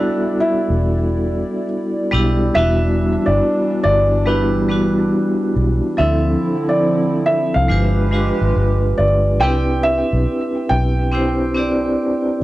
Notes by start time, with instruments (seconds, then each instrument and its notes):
Already playing: vibraphone G3 B3 D4 E4 F#4 A4, upright piano D4, analog synth pad E4 D5 E5
0.40 upright piano E4
0.70 fingered electric bass E1
2.11 fingered electric bass B1, vibraphone G3 B3 D4 E4 G4
2.54 fingered electric bass E1, analog synth pad E3 G3 D4, vibraphone G3 B3 D4 E4 F#4, upright piano E5
3.26 fingered electric bass G1, upright piano D5
3.84 fingered electric bass G1, upright piano D5
4.25 vibraphone G3 B3 D4 E4 G4, upright piano B4
4.68 vibraphone G3 B3 D4 E4 F#4
5.56 fingered electric bass B1
5.97 fingered electric bass D2, analog synth pad D3 F3 C4 E4, vibraphone F3 C4 D4 E4 A4, upright piano E5
6.69 upright piano D5
7.26 upright piano E5
7.54 fingered electric bass C2, upright piano F5
7.68 fingered electric bass G1, vibraphone G#3 D4 F4 G4 B4, analog synth pad G#3 G4 B4
8.11 vibraphone G#3 D4 F4 G4 B4
8.41 fingered electric bass G#1
8.56 fingered electric bass G1
8.98 fingered electric bass G1, upright piano D5
9.40 fingered electric bass C2, vibraphone C4 D4 E4 G4 B4, upright piano G5
9.83 upright piano E5
10.13 fingered electric bass B1
10.69 fingered electric bass B1, upright piano G5
11.12 vibraphone C4 D4 E4 G4 C5
11.54 vibraphone C4 D4 E4 G4 D5